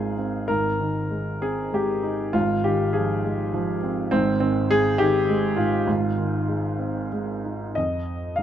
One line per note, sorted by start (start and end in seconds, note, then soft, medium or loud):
0.00 0.44 G#1 medium
0.00 0.44 G#2 medium
0.00 0.13 D#3 soft
0.00 0.50 G#3 medium
0.00 0.16 C4 medium
0.00 0.12 D#4 medium
0.00 0.50 F4 medium
0.00 0.51 G#4 medium
0.18 0.48 C4 medium
0.48 2.30 G#1 soft
0.48 2.30 G#2 medium
0.48 1.38 A#4 medium
0.80 2.00 D#3 soft
1.10 1.71 G#3 soft
1.42 2.31 C4 medium
1.42 1.74 G#4 medium
1.73 2.32 G#3 medium
1.73 2.36 G4 medium
2.03 2.33 D#4 medium
2.33 4.07 G#1 medium
2.33 4.07 G#2 medium
2.33 2.61 F4 medium
2.64 3.79 D#3 medium
2.64 2.95 G4 medium
2.93 3.53 F3 medium
2.93 3.78 G#4 medium
3.24 4.09 G#3 medium
3.54 4.10 F3 medium
3.83 4.10 C4 medium
4.11 5.84 G#1 medium
4.11 5.56 G#2 medium
4.11 4.39 C4 loud
4.40 4.99 D#3 medium
4.40 4.71 C4 medium
4.71 5.28 G#3 medium
4.71 4.98 G#4 loud
4.98 5.85 D#3 medium
4.98 5.59 G4 loud
5.30 5.86 G#3 medium
5.56 5.86 G#2 medium
5.56 7.08 F4 medium
5.87 7.72 G#1 medium
5.87 7.72 G#2 medium
6.17 7.41 D#3 soft
6.48 7.11 G#3 soft
6.79 7.73 C4 medium
7.12 7.74 G#3 medium
7.45 7.75 D#4 soft
7.75 8.43 F2 medium
7.75 8.34 D#5 medium
8.36 8.43 F3 soft
8.36 8.43 G#3 soft
8.36 8.43 D#4 soft
8.36 8.43 F5 medium